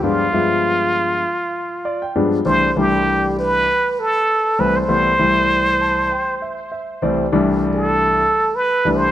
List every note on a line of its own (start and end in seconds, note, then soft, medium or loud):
0.03 0.24 G2 medium
0.03 0.24 F3 medium
0.03 0.24 G#3 medium
0.03 0.24 B3 medium
0.03 0.25 D4 medium
0.03 2.15 F4 medium
0.33 1.20 G2 medium
0.33 1.20 F3 medium
0.33 1.20 G#3 medium
0.33 1.20 B3 medium
0.33 1.20 E5 medium
1.85 1.99 D5 medium
2.02 2.43 G5 medium
2.16 2.37 G2 medium
2.16 2.37 F3 medium
2.16 2.37 G#3 medium
2.16 2.37 B3 medium
2.16 2.37 D4 medium
2.45 2.67 C2 medium
2.45 2.67 E3 medium
2.45 2.67 G3 medium
2.45 2.67 A3 medium
2.45 2.67 D4 medium
2.45 2.80 C5 medium
2.76 3.64 C2 medium
2.76 3.64 E3 medium
2.76 3.64 G3 medium
2.76 3.64 A3 medium
2.76 3.64 D4 medium
2.76 3.38 G4 medium
3.39 4.01 B4 loud
4.00 4.62 A4 medium
4.59 4.81 C2 medium
4.59 4.81 E3 medium
4.59 4.81 G3 medium
4.59 4.81 A3 medium
4.59 4.81 C4 medium
4.59 4.78 B4 medium
4.77 6.73 C5 medium
4.88 5.11 C2 medium
4.88 5.11 E3 medium
4.88 5.11 G3 medium
4.88 5.11 A3 medium
4.88 5.11 B3 medium
5.19 6.07 C2 medium
5.19 6.07 E3 medium
5.19 6.07 G3 medium
5.19 6.07 A3 medium
5.19 6.07 E4 medium
5.81 6.09 A5 medium
6.11 6.39 G5 medium
6.42 6.70 E5 medium
6.72 7.00 E5 medium
7.02 7.24 C2 medium
7.02 7.24 E3 medium
7.02 7.25 G3 medium
7.02 7.24 A3 medium
7.02 7.24 C4 medium
7.02 7.31 D5 medium
7.32 8.20 C2 medium
7.32 8.21 E3 medium
7.32 8.20 G3 medium
7.32 8.21 A3 medium
7.32 8.21 D4 medium
7.74 8.57 A4 medium
8.56 8.98 B4 medium
8.85 9.12 C2 medium
8.85 9.12 E3 medium
8.85 9.12 G3 medium
8.85 9.12 A3 medium
8.85 9.12 D4 medium
8.96 9.12 C5 medium